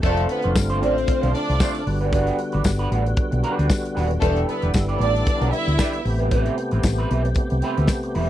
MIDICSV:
0, 0, Header, 1, 7, 480
1, 0, Start_track
1, 0, Tempo, 523560
1, 28, Time_signature, 4, 2, 24, 8
1, 7607, End_track
2, 0, Start_track
2, 0, Title_t, "Violin section"
2, 0, Program_c, 0, 48
2, 27, Note_on_c, 0, 57, 101
2, 27, Note_on_c, 0, 69, 112
2, 134, Note_off_c, 0, 57, 0
2, 135, Note_off_c, 0, 69, 0
2, 273, Note_on_c, 0, 59, 89
2, 275, Note_on_c, 0, 71, 85
2, 378, Note_off_c, 0, 59, 0
2, 379, Note_off_c, 0, 71, 0
2, 754, Note_on_c, 0, 72, 87
2, 755, Note_on_c, 0, 60, 93
2, 1201, Note_off_c, 0, 72, 0
2, 1202, Note_off_c, 0, 60, 0
2, 1236, Note_on_c, 0, 62, 85
2, 1238, Note_on_c, 0, 74, 88
2, 1682, Note_off_c, 0, 62, 0
2, 1683, Note_off_c, 0, 74, 0
2, 3851, Note_on_c, 0, 69, 116
2, 3855, Note_on_c, 0, 57, 103
2, 3964, Note_off_c, 0, 69, 0
2, 3966, Note_off_c, 0, 57, 0
2, 4112, Note_on_c, 0, 59, 90
2, 4114, Note_on_c, 0, 71, 89
2, 4216, Note_off_c, 0, 59, 0
2, 4218, Note_off_c, 0, 71, 0
2, 4587, Note_on_c, 0, 62, 84
2, 4591, Note_on_c, 0, 74, 101
2, 5037, Note_off_c, 0, 62, 0
2, 5039, Note_off_c, 0, 74, 0
2, 5071, Note_on_c, 0, 76, 99
2, 5074, Note_on_c, 0, 64, 90
2, 5519, Note_off_c, 0, 76, 0
2, 5521, Note_off_c, 0, 64, 0
2, 7607, End_track
3, 0, Start_track
3, 0, Title_t, "Clean electric guitar"
3, 0, Program_c, 1, 27
3, 33, Note_on_c, 1, 57, 73
3, 36, Note_on_c, 1, 62, 89
3, 44, Note_on_c, 1, 65, 102
3, 46, Note_on_c, 1, 72, 90
3, 253, Note_off_c, 1, 57, 0
3, 255, Note_off_c, 1, 62, 0
3, 259, Note_off_c, 1, 65, 0
3, 260, Note_off_c, 1, 72, 0
3, 404, Note_on_c, 1, 72, 59
3, 410, Note_on_c, 1, 65, 69
3, 417, Note_on_c, 1, 62, 58
3, 421, Note_on_c, 1, 57, 58
3, 487, Note_off_c, 1, 72, 0
3, 489, Note_off_c, 1, 65, 0
3, 493, Note_off_c, 1, 62, 0
3, 495, Note_off_c, 1, 57, 0
3, 640, Note_on_c, 1, 72, 87
3, 643, Note_on_c, 1, 65, 76
3, 649, Note_on_c, 1, 62, 71
3, 653, Note_on_c, 1, 57, 65
3, 734, Note_off_c, 1, 57, 0
3, 741, Note_off_c, 1, 62, 0
3, 741, Note_off_c, 1, 65, 0
3, 745, Note_on_c, 1, 57, 67
3, 748, Note_off_c, 1, 72, 0
3, 752, Note_on_c, 1, 62, 77
3, 752, Note_on_c, 1, 65, 70
3, 758, Note_on_c, 1, 74, 73
3, 852, Note_off_c, 1, 57, 0
3, 856, Note_off_c, 1, 62, 0
3, 856, Note_off_c, 1, 65, 0
3, 859, Note_off_c, 1, 74, 0
3, 1114, Note_on_c, 1, 72, 95
3, 1125, Note_on_c, 1, 65, 81
3, 1128, Note_on_c, 1, 62, 71
3, 1132, Note_on_c, 1, 57, 79
3, 1217, Note_off_c, 1, 57, 0
3, 1218, Note_off_c, 1, 62, 0
3, 1224, Note_off_c, 1, 65, 0
3, 1225, Note_off_c, 1, 72, 0
3, 1465, Note_on_c, 1, 57, 96
3, 1471, Note_on_c, 1, 62, 97
3, 1477, Note_on_c, 1, 65, 86
3, 1482, Note_on_c, 1, 72, 96
3, 1592, Note_off_c, 1, 72, 0
3, 1599, Note_off_c, 1, 65, 0
3, 1601, Note_off_c, 1, 57, 0
3, 1604, Note_off_c, 1, 62, 0
3, 1842, Note_on_c, 1, 71, 68
3, 1848, Note_on_c, 1, 66, 66
3, 1857, Note_on_c, 1, 62, 52
3, 1862, Note_on_c, 1, 55, 53
3, 1924, Note_off_c, 1, 71, 0
3, 1928, Note_off_c, 1, 66, 0
3, 1931, Note_off_c, 1, 55, 0
3, 1932, Note_off_c, 1, 62, 0
3, 1942, Note_on_c, 1, 55, 83
3, 1949, Note_on_c, 1, 62, 83
3, 1958, Note_on_c, 1, 66, 87
3, 1962, Note_on_c, 1, 71, 90
3, 2167, Note_off_c, 1, 55, 0
3, 2170, Note_off_c, 1, 62, 0
3, 2175, Note_off_c, 1, 66, 0
3, 2177, Note_off_c, 1, 71, 0
3, 2317, Note_on_c, 1, 71, 65
3, 2326, Note_on_c, 1, 66, 60
3, 2332, Note_on_c, 1, 62, 60
3, 2338, Note_on_c, 1, 55, 48
3, 2402, Note_off_c, 1, 71, 0
3, 2407, Note_off_c, 1, 66, 0
3, 2410, Note_off_c, 1, 62, 0
3, 2412, Note_off_c, 1, 55, 0
3, 2560, Note_on_c, 1, 71, 79
3, 2570, Note_on_c, 1, 66, 76
3, 2576, Note_on_c, 1, 62, 67
3, 2581, Note_on_c, 1, 55, 65
3, 2656, Note_off_c, 1, 55, 0
3, 2664, Note_off_c, 1, 62, 0
3, 2667, Note_off_c, 1, 71, 0
3, 2667, Note_on_c, 1, 55, 67
3, 2669, Note_off_c, 1, 66, 0
3, 2675, Note_on_c, 1, 62, 75
3, 2680, Note_on_c, 1, 66, 67
3, 2685, Note_on_c, 1, 71, 70
3, 2772, Note_off_c, 1, 55, 0
3, 2776, Note_off_c, 1, 62, 0
3, 2779, Note_off_c, 1, 66, 0
3, 2781, Note_off_c, 1, 71, 0
3, 3140, Note_on_c, 1, 55, 76
3, 3148, Note_on_c, 1, 62, 82
3, 3155, Note_on_c, 1, 66, 91
3, 3157, Note_on_c, 1, 71, 103
3, 3264, Note_off_c, 1, 71, 0
3, 3268, Note_off_c, 1, 66, 0
3, 3275, Note_on_c, 1, 71, 68
3, 3276, Note_off_c, 1, 62, 0
3, 3279, Note_on_c, 1, 66, 68
3, 3282, Note_off_c, 1, 55, 0
3, 3287, Note_on_c, 1, 62, 62
3, 3293, Note_on_c, 1, 55, 55
3, 3361, Note_off_c, 1, 71, 0
3, 3363, Note_off_c, 1, 66, 0
3, 3366, Note_off_c, 1, 55, 0
3, 3367, Note_off_c, 1, 62, 0
3, 3620, Note_on_c, 1, 55, 82
3, 3628, Note_on_c, 1, 62, 82
3, 3634, Note_on_c, 1, 66, 87
3, 3637, Note_on_c, 1, 71, 92
3, 3744, Note_off_c, 1, 71, 0
3, 3751, Note_off_c, 1, 66, 0
3, 3755, Note_off_c, 1, 62, 0
3, 3758, Note_off_c, 1, 55, 0
3, 3863, Note_on_c, 1, 59, 75
3, 3871, Note_on_c, 1, 62, 80
3, 3877, Note_on_c, 1, 67, 76
3, 3880, Note_on_c, 1, 71, 74
3, 4087, Note_off_c, 1, 59, 0
3, 4091, Note_off_c, 1, 62, 0
3, 4093, Note_off_c, 1, 67, 0
3, 4095, Note_off_c, 1, 71, 0
3, 4235, Note_on_c, 1, 71, 62
3, 4244, Note_on_c, 1, 67, 57
3, 4252, Note_on_c, 1, 62, 48
3, 4257, Note_on_c, 1, 59, 52
3, 4320, Note_off_c, 1, 71, 0
3, 4325, Note_off_c, 1, 67, 0
3, 4329, Note_off_c, 1, 62, 0
3, 4331, Note_off_c, 1, 59, 0
3, 4478, Note_on_c, 1, 71, 84
3, 4482, Note_on_c, 1, 67, 86
3, 4489, Note_on_c, 1, 62, 68
3, 4490, Note_on_c, 1, 59, 77
3, 4568, Note_off_c, 1, 59, 0
3, 4576, Note_off_c, 1, 62, 0
3, 4579, Note_on_c, 1, 59, 67
3, 4580, Note_off_c, 1, 67, 0
3, 4585, Note_off_c, 1, 71, 0
3, 4587, Note_on_c, 1, 62, 69
3, 4591, Note_on_c, 1, 67, 60
3, 4595, Note_on_c, 1, 74, 62
3, 4688, Note_off_c, 1, 59, 0
3, 4692, Note_off_c, 1, 62, 0
3, 4694, Note_off_c, 1, 67, 0
3, 4696, Note_off_c, 1, 74, 0
3, 4954, Note_on_c, 1, 71, 90
3, 4964, Note_on_c, 1, 67, 83
3, 4969, Note_on_c, 1, 62, 76
3, 4974, Note_on_c, 1, 59, 69
3, 5054, Note_off_c, 1, 59, 0
3, 5056, Note_off_c, 1, 62, 0
3, 5060, Note_off_c, 1, 67, 0
3, 5065, Note_off_c, 1, 71, 0
3, 5303, Note_on_c, 1, 59, 86
3, 5312, Note_on_c, 1, 62, 87
3, 5317, Note_on_c, 1, 67, 101
3, 5321, Note_on_c, 1, 71, 107
3, 5426, Note_off_c, 1, 71, 0
3, 5436, Note_off_c, 1, 67, 0
3, 5440, Note_off_c, 1, 59, 0
3, 5444, Note_off_c, 1, 62, 0
3, 5671, Note_on_c, 1, 71, 65
3, 5681, Note_on_c, 1, 64, 62
3, 5686, Note_on_c, 1, 60, 49
3, 5689, Note_on_c, 1, 55, 56
3, 5759, Note_off_c, 1, 71, 0
3, 5764, Note_off_c, 1, 64, 0
3, 5766, Note_off_c, 1, 60, 0
3, 5768, Note_off_c, 1, 55, 0
3, 5786, Note_on_c, 1, 55, 78
3, 5792, Note_on_c, 1, 60, 88
3, 5799, Note_on_c, 1, 64, 94
3, 5803, Note_on_c, 1, 71, 99
3, 6009, Note_off_c, 1, 55, 0
3, 6012, Note_off_c, 1, 60, 0
3, 6015, Note_off_c, 1, 64, 0
3, 6017, Note_off_c, 1, 71, 0
3, 6158, Note_on_c, 1, 71, 62
3, 6166, Note_on_c, 1, 64, 60
3, 6171, Note_on_c, 1, 60, 53
3, 6177, Note_on_c, 1, 55, 51
3, 6243, Note_off_c, 1, 71, 0
3, 6246, Note_off_c, 1, 64, 0
3, 6249, Note_off_c, 1, 60, 0
3, 6252, Note_off_c, 1, 55, 0
3, 6403, Note_on_c, 1, 71, 99
3, 6409, Note_on_c, 1, 64, 81
3, 6412, Note_on_c, 1, 60, 77
3, 6417, Note_on_c, 1, 55, 74
3, 6495, Note_off_c, 1, 55, 0
3, 6505, Note_off_c, 1, 60, 0
3, 6506, Note_on_c, 1, 55, 65
3, 6509, Note_off_c, 1, 64, 0
3, 6509, Note_off_c, 1, 71, 0
3, 6516, Note_on_c, 1, 60, 82
3, 6520, Note_on_c, 1, 64, 80
3, 6527, Note_on_c, 1, 71, 71
3, 6613, Note_off_c, 1, 55, 0
3, 6618, Note_off_c, 1, 60, 0
3, 6619, Note_off_c, 1, 64, 0
3, 6623, Note_off_c, 1, 71, 0
3, 6990, Note_on_c, 1, 55, 91
3, 6999, Note_on_c, 1, 60, 103
3, 7002, Note_on_c, 1, 64, 97
3, 7006, Note_on_c, 1, 71, 96
3, 7114, Note_off_c, 1, 71, 0
3, 7120, Note_off_c, 1, 64, 0
3, 7123, Note_off_c, 1, 60, 0
3, 7125, Note_off_c, 1, 55, 0
3, 7125, Note_on_c, 1, 71, 66
3, 7131, Note_on_c, 1, 64, 58
3, 7134, Note_on_c, 1, 60, 56
3, 7141, Note_on_c, 1, 55, 60
3, 7207, Note_off_c, 1, 71, 0
3, 7210, Note_off_c, 1, 64, 0
3, 7212, Note_off_c, 1, 60, 0
3, 7215, Note_off_c, 1, 55, 0
3, 7469, Note_on_c, 1, 55, 85
3, 7472, Note_on_c, 1, 60, 87
3, 7480, Note_on_c, 1, 64, 97
3, 7484, Note_on_c, 1, 71, 91
3, 7589, Note_off_c, 1, 71, 0
3, 7596, Note_off_c, 1, 64, 0
3, 7603, Note_off_c, 1, 60, 0
3, 7605, Note_off_c, 1, 55, 0
3, 7607, End_track
4, 0, Start_track
4, 0, Title_t, "Tonewheel organ"
4, 0, Program_c, 2, 16
4, 0, Note_on_c, 2, 57, 62
4, 25, Note_on_c, 2, 60, 65
4, 26, Note_on_c, 2, 65, 70
4, 27, Note_on_c, 2, 50, 73
4, 1673, Note_off_c, 2, 57, 0
4, 1687, Note_off_c, 2, 60, 0
4, 1688, Note_off_c, 2, 65, 0
4, 1713, Note_on_c, 2, 59, 65
4, 1715, Note_on_c, 2, 55, 66
4, 1715, Note_on_c, 2, 66, 72
4, 3847, Note_off_c, 2, 66, 0
4, 3876, Note_on_c, 2, 64, 73
4, 5507, Note_off_c, 2, 50, 0
4, 5512, Note_off_c, 2, 55, 0
4, 5533, Note_off_c, 2, 64, 0
4, 5544, Note_on_c, 2, 48, 73
4, 5544, Note_on_c, 2, 67, 77
4, 5547, Note_on_c, 2, 57, 64
4, 7607, Note_off_c, 2, 48, 0
4, 7607, Note_off_c, 2, 57, 0
4, 7607, Note_off_c, 2, 59, 0
4, 7607, Note_off_c, 2, 67, 0
4, 7607, End_track
5, 0, Start_track
5, 0, Title_t, "Fingered electric bass"
5, 0, Program_c, 3, 33
5, 32, Note_on_c, 3, 29, 103
5, 227, Note_off_c, 3, 29, 0
5, 412, Note_on_c, 3, 29, 99
5, 511, Note_off_c, 3, 29, 0
5, 511, Note_on_c, 3, 31, 87
5, 755, Note_off_c, 3, 31, 0
5, 755, Note_on_c, 3, 33, 111
5, 948, Note_off_c, 3, 33, 0
5, 1131, Note_on_c, 3, 35, 83
5, 1213, Note_off_c, 3, 35, 0
5, 1371, Note_on_c, 3, 36, 90
5, 1453, Note_off_c, 3, 36, 0
5, 1713, Note_on_c, 3, 31, 99
5, 2104, Note_off_c, 3, 31, 0
5, 2332, Note_on_c, 3, 31, 98
5, 2413, Note_off_c, 3, 31, 0
5, 2430, Note_on_c, 3, 31, 88
5, 2625, Note_off_c, 3, 31, 0
5, 2674, Note_on_c, 3, 33, 105
5, 2867, Note_off_c, 3, 33, 0
5, 3050, Note_on_c, 3, 35, 95
5, 3132, Note_off_c, 3, 35, 0
5, 3292, Note_on_c, 3, 38, 97
5, 3373, Note_off_c, 3, 38, 0
5, 3639, Note_on_c, 3, 27, 96
5, 3830, Note_off_c, 3, 27, 0
5, 3871, Note_on_c, 3, 28, 100
5, 4065, Note_off_c, 3, 28, 0
5, 4245, Note_on_c, 3, 28, 92
5, 4329, Note_off_c, 3, 28, 0
5, 4355, Note_on_c, 3, 31, 86
5, 4547, Note_off_c, 3, 31, 0
5, 4585, Note_on_c, 3, 33, 111
5, 4782, Note_off_c, 3, 33, 0
5, 4964, Note_on_c, 3, 35, 85
5, 5048, Note_off_c, 3, 35, 0
5, 5203, Note_on_c, 3, 38, 84
5, 5288, Note_off_c, 3, 38, 0
5, 5550, Note_on_c, 3, 33, 104
5, 5942, Note_off_c, 3, 33, 0
5, 6166, Note_on_c, 3, 33, 85
5, 6250, Note_off_c, 3, 33, 0
5, 6271, Note_on_c, 3, 33, 75
5, 6466, Note_off_c, 3, 33, 0
5, 6519, Note_on_c, 3, 35, 118
5, 6711, Note_off_c, 3, 35, 0
5, 6893, Note_on_c, 3, 36, 85
5, 6975, Note_off_c, 3, 36, 0
5, 7132, Note_on_c, 3, 38, 97
5, 7215, Note_off_c, 3, 38, 0
5, 7477, Note_on_c, 3, 28, 115
5, 7607, Note_off_c, 3, 28, 0
5, 7607, End_track
6, 0, Start_track
6, 0, Title_t, "Muted clean electric guitar strokes"
6, 266, Note_on_c, 9, 29, 43
6, 357, Note_off_c, 9, 29, 0
6, 505, Note_on_c, 9, 29, 44
6, 597, Note_off_c, 9, 29, 0
6, 880, Note_on_c, 9, 29, 51
6, 971, Note_off_c, 9, 29, 0
6, 994, Note_on_c, 9, 29, 42
6, 1086, Note_off_c, 9, 29, 0
6, 1228, Note_on_c, 9, 29, 44
6, 1320, Note_off_c, 9, 29, 0
6, 1365, Note_on_c, 9, 29, 38
6, 1456, Note_off_c, 9, 29, 0
6, 1603, Note_on_c, 9, 29, 55
6, 1695, Note_off_c, 9, 29, 0
6, 1709, Note_on_c, 9, 29, 45
6, 1800, Note_off_c, 9, 29, 0
6, 2187, Note_on_c, 9, 29, 45
6, 2279, Note_off_c, 9, 29, 0
6, 2432, Note_on_c, 9, 29, 44
6, 2523, Note_off_c, 9, 29, 0
6, 2801, Note_on_c, 9, 29, 39
6, 2892, Note_off_c, 9, 29, 0
6, 2906, Note_on_c, 9, 29, 45
6, 2997, Note_off_c, 9, 29, 0
6, 3037, Note_on_c, 9, 29, 56
6, 3129, Note_off_c, 9, 29, 0
6, 3377, Note_on_c, 9, 29, 47
6, 3469, Note_off_c, 9, 29, 0
6, 3512, Note_on_c, 9, 29, 51
6, 3603, Note_off_c, 9, 29, 0
6, 3755, Note_on_c, 9, 29, 36
6, 3847, Note_off_c, 9, 29, 0
6, 4109, Note_on_c, 9, 29, 37
6, 4200, Note_off_c, 9, 29, 0
6, 4346, Note_on_c, 9, 29, 38
6, 4437, Note_off_c, 9, 29, 0
6, 4718, Note_on_c, 9, 29, 44
6, 4809, Note_off_c, 9, 29, 0
6, 4825, Note_on_c, 9, 29, 40
6, 4916, Note_off_c, 9, 29, 0
6, 5065, Note_on_c, 9, 29, 42
6, 5156, Note_off_c, 9, 29, 0
6, 5200, Note_on_c, 9, 29, 52
6, 5292, Note_off_c, 9, 29, 0
6, 5437, Note_on_c, 9, 29, 44
6, 5528, Note_off_c, 9, 29, 0
6, 5545, Note_on_c, 9, 29, 41
6, 5637, Note_off_c, 9, 29, 0
6, 6026, Note_on_c, 9, 29, 37
6, 6118, Note_off_c, 9, 29, 0
6, 6263, Note_on_c, 9, 29, 44
6, 6355, Note_off_c, 9, 29, 0
6, 6645, Note_on_c, 9, 29, 42
6, 6737, Note_off_c, 9, 29, 0
6, 6757, Note_on_c, 9, 29, 46
6, 6849, Note_off_c, 9, 29, 0
6, 6884, Note_on_c, 9, 29, 54
6, 6975, Note_off_c, 9, 29, 0
6, 7232, Note_on_c, 9, 29, 38
6, 7324, Note_off_c, 9, 29, 0
6, 7367, Note_on_c, 9, 29, 54
6, 7459, Note_off_c, 9, 29, 0
6, 7607, End_track
7, 0, Start_track
7, 0, Title_t, "Drums"
7, 29, Note_on_c, 9, 36, 118
7, 31, Note_on_c, 9, 42, 79
7, 121, Note_off_c, 9, 36, 0
7, 123, Note_off_c, 9, 42, 0
7, 158, Note_on_c, 9, 42, 52
7, 250, Note_off_c, 9, 42, 0
7, 267, Note_on_c, 9, 42, 74
7, 359, Note_off_c, 9, 42, 0
7, 389, Note_on_c, 9, 42, 50
7, 480, Note_off_c, 9, 42, 0
7, 509, Note_on_c, 9, 36, 122
7, 510, Note_on_c, 9, 54, 116
7, 514, Note_on_c, 9, 38, 122
7, 601, Note_off_c, 9, 36, 0
7, 601, Note_off_c, 9, 54, 0
7, 606, Note_off_c, 9, 38, 0
7, 636, Note_on_c, 9, 42, 50
7, 728, Note_off_c, 9, 42, 0
7, 759, Note_on_c, 9, 42, 68
7, 851, Note_off_c, 9, 42, 0
7, 899, Note_on_c, 9, 42, 52
7, 987, Note_off_c, 9, 42, 0
7, 987, Note_on_c, 9, 42, 90
7, 990, Note_on_c, 9, 36, 116
7, 1078, Note_off_c, 9, 42, 0
7, 1082, Note_off_c, 9, 36, 0
7, 1128, Note_on_c, 9, 42, 52
7, 1219, Note_off_c, 9, 42, 0
7, 1236, Note_on_c, 9, 42, 73
7, 1328, Note_off_c, 9, 42, 0
7, 1378, Note_on_c, 9, 42, 62
7, 1467, Note_on_c, 9, 54, 127
7, 1469, Note_off_c, 9, 42, 0
7, 1469, Note_on_c, 9, 36, 127
7, 1469, Note_on_c, 9, 38, 122
7, 1559, Note_off_c, 9, 54, 0
7, 1560, Note_off_c, 9, 38, 0
7, 1561, Note_off_c, 9, 36, 0
7, 1602, Note_on_c, 9, 42, 59
7, 1694, Note_off_c, 9, 42, 0
7, 1714, Note_on_c, 9, 46, 76
7, 1806, Note_off_c, 9, 46, 0
7, 1848, Note_on_c, 9, 42, 43
7, 1940, Note_off_c, 9, 42, 0
7, 1949, Note_on_c, 9, 36, 113
7, 1952, Note_on_c, 9, 42, 73
7, 2041, Note_off_c, 9, 36, 0
7, 2043, Note_off_c, 9, 42, 0
7, 2080, Note_on_c, 9, 42, 49
7, 2172, Note_off_c, 9, 42, 0
7, 2188, Note_on_c, 9, 42, 67
7, 2279, Note_off_c, 9, 42, 0
7, 2312, Note_on_c, 9, 42, 49
7, 2404, Note_off_c, 9, 42, 0
7, 2422, Note_on_c, 9, 54, 113
7, 2428, Note_on_c, 9, 36, 115
7, 2433, Note_on_c, 9, 38, 118
7, 2513, Note_off_c, 9, 54, 0
7, 2520, Note_off_c, 9, 36, 0
7, 2525, Note_off_c, 9, 38, 0
7, 2555, Note_on_c, 9, 42, 50
7, 2647, Note_off_c, 9, 42, 0
7, 2677, Note_on_c, 9, 42, 71
7, 2769, Note_off_c, 9, 42, 0
7, 2809, Note_on_c, 9, 42, 51
7, 2900, Note_off_c, 9, 42, 0
7, 2903, Note_on_c, 9, 42, 82
7, 2907, Note_on_c, 9, 36, 127
7, 2995, Note_off_c, 9, 42, 0
7, 2999, Note_off_c, 9, 36, 0
7, 3045, Note_on_c, 9, 42, 51
7, 3136, Note_off_c, 9, 42, 0
7, 3150, Note_on_c, 9, 42, 77
7, 3242, Note_off_c, 9, 42, 0
7, 3294, Note_on_c, 9, 42, 67
7, 3385, Note_off_c, 9, 42, 0
7, 3388, Note_on_c, 9, 36, 127
7, 3391, Note_on_c, 9, 38, 127
7, 3392, Note_on_c, 9, 54, 127
7, 3480, Note_off_c, 9, 36, 0
7, 3483, Note_off_c, 9, 38, 0
7, 3483, Note_off_c, 9, 54, 0
7, 3531, Note_on_c, 9, 42, 58
7, 3623, Note_off_c, 9, 42, 0
7, 3634, Note_on_c, 9, 38, 43
7, 3639, Note_on_c, 9, 46, 76
7, 3726, Note_off_c, 9, 38, 0
7, 3730, Note_off_c, 9, 46, 0
7, 3766, Note_on_c, 9, 42, 51
7, 3858, Note_off_c, 9, 42, 0
7, 3868, Note_on_c, 9, 36, 120
7, 3871, Note_on_c, 9, 42, 85
7, 3960, Note_off_c, 9, 36, 0
7, 3963, Note_off_c, 9, 42, 0
7, 4002, Note_on_c, 9, 42, 48
7, 4093, Note_off_c, 9, 42, 0
7, 4115, Note_on_c, 9, 42, 68
7, 4206, Note_off_c, 9, 42, 0
7, 4238, Note_on_c, 9, 42, 51
7, 4329, Note_off_c, 9, 42, 0
7, 4343, Note_on_c, 9, 54, 114
7, 4349, Note_on_c, 9, 36, 120
7, 4358, Note_on_c, 9, 38, 117
7, 4434, Note_off_c, 9, 54, 0
7, 4440, Note_off_c, 9, 36, 0
7, 4450, Note_off_c, 9, 38, 0
7, 4482, Note_on_c, 9, 42, 42
7, 4574, Note_off_c, 9, 42, 0
7, 4598, Note_on_c, 9, 42, 67
7, 4689, Note_off_c, 9, 42, 0
7, 4734, Note_on_c, 9, 42, 55
7, 4825, Note_off_c, 9, 42, 0
7, 4828, Note_on_c, 9, 42, 87
7, 4829, Note_on_c, 9, 36, 127
7, 4920, Note_off_c, 9, 42, 0
7, 4921, Note_off_c, 9, 36, 0
7, 4965, Note_on_c, 9, 42, 51
7, 5057, Note_off_c, 9, 42, 0
7, 5073, Note_on_c, 9, 42, 72
7, 5165, Note_off_c, 9, 42, 0
7, 5212, Note_on_c, 9, 42, 61
7, 5304, Note_off_c, 9, 42, 0
7, 5305, Note_on_c, 9, 38, 125
7, 5307, Note_on_c, 9, 36, 127
7, 5308, Note_on_c, 9, 54, 115
7, 5396, Note_off_c, 9, 38, 0
7, 5399, Note_off_c, 9, 36, 0
7, 5400, Note_off_c, 9, 54, 0
7, 5440, Note_on_c, 9, 42, 59
7, 5532, Note_off_c, 9, 42, 0
7, 5551, Note_on_c, 9, 46, 83
7, 5643, Note_off_c, 9, 46, 0
7, 5679, Note_on_c, 9, 42, 49
7, 5771, Note_off_c, 9, 42, 0
7, 5788, Note_on_c, 9, 36, 114
7, 5788, Note_on_c, 9, 42, 83
7, 5879, Note_off_c, 9, 42, 0
7, 5880, Note_off_c, 9, 36, 0
7, 5920, Note_on_c, 9, 42, 51
7, 6011, Note_off_c, 9, 42, 0
7, 6032, Note_on_c, 9, 42, 75
7, 6123, Note_off_c, 9, 42, 0
7, 6155, Note_on_c, 9, 42, 50
7, 6246, Note_off_c, 9, 42, 0
7, 6264, Note_on_c, 9, 54, 124
7, 6268, Note_on_c, 9, 36, 116
7, 6274, Note_on_c, 9, 38, 123
7, 6356, Note_off_c, 9, 54, 0
7, 6359, Note_off_c, 9, 36, 0
7, 6365, Note_off_c, 9, 38, 0
7, 6395, Note_on_c, 9, 42, 47
7, 6487, Note_off_c, 9, 42, 0
7, 6516, Note_on_c, 9, 42, 67
7, 6607, Note_off_c, 9, 42, 0
7, 6646, Note_on_c, 9, 42, 50
7, 6735, Note_off_c, 9, 42, 0
7, 6735, Note_on_c, 9, 42, 87
7, 6745, Note_on_c, 9, 36, 127
7, 6827, Note_off_c, 9, 42, 0
7, 6836, Note_off_c, 9, 36, 0
7, 6875, Note_on_c, 9, 42, 46
7, 6967, Note_off_c, 9, 42, 0
7, 6986, Note_on_c, 9, 42, 71
7, 7078, Note_off_c, 9, 42, 0
7, 7129, Note_on_c, 9, 42, 55
7, 7220, Note_off_c, 9, 42, 0
7, 7220, Note_on_c, 9, 38, 127
7, 7226, Note_on_c, 9, 36, 127
7, 7230, Note_on_c, 9, 54, 127
7, 7312, Note_off_c, 9, 38, 0
7, 7317, Note_off_c, 9, 36, 0
7, 7321, Note_off_c, 9, 54, 0
7, 7363, Note_on_c, 9, 42, 58
7, 7455, Note_off_c, 9, 42, 0
7, 7471, Note_on_c, 9, 46, 84
7, 7563, Note_off_c, 9, 46, 0
7, 7607, End_track
0, 0, End_of_file